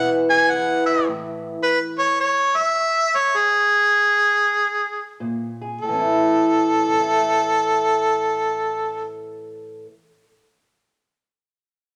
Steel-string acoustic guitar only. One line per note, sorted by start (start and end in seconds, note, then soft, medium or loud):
0.00 1.06 E2 medium
0.00 0.49 B2 medium
0.00 0.50 E3 medium
0.00 1.05 B3 medium
0.00 1.06 E4 medium
0.00 0.29 G#4 medium
0.31 1.05 G#4 medium
0.51 2.06 E3 medium
1.07 1.56 A2 medium
5.20 5.79 A#2 medium
5.62 5.80 G#4 medium
5.83 9.86 A2 medium
5.89 9.88 E3 medium
5.93 6.87 C#4 medium
5.99 6.94 E4 medium
6.88 9.86 A4 medium
6.94 9.89 C#5 medium
7.00 9.92 E5 medium